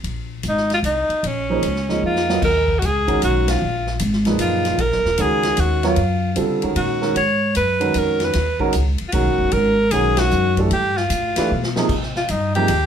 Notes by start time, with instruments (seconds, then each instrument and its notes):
0.04 upright bass A#1, ride
0.43 upright bass G#1, hi-hat pedal, ride
0.49 alto saxophone D#4
0.57 snare
0.70 alto saxophone F4, snare, ride
0.83 upright bass C2, alto saxophone D#4, hi-hat pedal, ride
1.09 muted upright bass stroke, ride
1.23 upright bass A#1, alto saxophone C#4, ride
1.50 grand piano F3 A#3 D#4 G#4 C5
1.63 upright bass C#2, hi-hat pedal, ride
1.76 snare
1.89 grand piano F3 A#3 D#4 G#4 D#5, snare
2.03 upright bass F2, alto saxophone F4
2.16 snare
2.29 grand piano F#3 B3 F4 A#4 D#5, snare
2.42 upright bass D#2, alto saxophone A#4, kick, crash
2.68 kick
2.79 upright bass C#2, alto saxophone F#4, hi-hat pedal, ride
2.86 alto saxophone G#4
3.08 grand piano D#3 G#3 C#4 F#4 A#4, kick, ride
3.22 upright bass B1, alto saxophone F#4, hi-hat pedal, ride
3.48 alto saxophone F4, snare, ride
3.62 upright bass A#1
3.87 snare
3.99 upright bass G#1, hi-hat pedal, ride
4.13 snare
4.25 grand piano A#2 F3 D#4 G#4 B4, snare, ride
4.39 upright bass F#1, alto saxophone F4, hi-hat pedal, ride
4.65 snare, ride
4.78 upright bass A#1, alto saxophone A#4, ride
4.92 upright bass F#1, snare
5.05 upright bass D#1, snare
5.18 upright bass C#2, grand piano D#3 G#3 C#4 F#4 A#4, hi-hat pedal, ride
5.22 alto saxophone G#4
5.43 snare, ride
5.57 upright bass D#2, alto saxophone F#4, hi-hat pedal, ride
5.83 grand piano F#3 B3 F4 A#4 C#5, alto saxophone F4, snare, ride
5.96 upright bass F#2, ride
6.36 upright bass C#3, grand piano D3 G3 C4 F4 A4, hi-hat pedal, ride
6.62 grand piano D#3 G#3 C#4 F#4 A#4, muted upright bass stroke, ride
6.76 upright bass A#2, alto saxophone F#4, ride
7.01 grand piano D#3 G#3 C#4 F#4 A#4, snare
7.16 upright bass G#2, alto saxophone C#5, ride
7.55 upright bass F#2, alto saxophone B4, hi-hat pedal, ride
7.80 grand piano D#3 G#3 C#4 F#4 A#4, ride
7.94 upright bass F2, hi-hat pedal, ride
7.98 alto saxophone A#4
8.20 snare, ride
8.24 alto saxophone B4
8.33 upright bass D#2, snare, ride
8.59 grand piano D#3 G#3 C#4 F#4 A#4, kick
8.73 upright bass C#2, hi-hat pedal, ride
8.98 muted upright bass stroke, ride
9.09 grand piano D#3, alto saxophone F4, ride
9.13 upright bass B1, grand piano G#3 C#4 F#4 A#4, alto saxophone F#4
9.26 upright bass G#1
9.38 upright bass F#1, kick
9.52 upright bass G#1, alto saxophone A#4, ride
9.91 upright bass B1, grand piano D#3 G#3 C#4 F#4 A#4, alto saxophone G#4, hi-hat pedal, ride
10.17 alto saxophone F#4, snare, ride
10.31 upright bass F#2, hi-hat pedal
10.57 grand piano E3 A3 D4 G4 A4, kick, ride
10.71 upright bass G2, alto saxophone G4, ride
10.97 alto saxophone F4, snare
11.10 upright bass A2, hi-hat pedal, ride
11.36 grand piano E3 A3 D4 G4 B4, muted upright bass stroke, snare, ride
11.51 upright bass B2
11.63 snare
11.76 grand piano C3 F3 A#3 D#4 G#4, snare
11.89 upright bass C3, kick, crash
12.03 snare
12.16 alto saxophone F4, snare
12.28 upright bass G2, alto saxophone D#4, hi-hat pedal, ride
12.55 grand piano C3 F3 A#3 D#4 G#4, alto saxophone G4, ride
12.68 upright bass D#2, hi-hat pedal, ride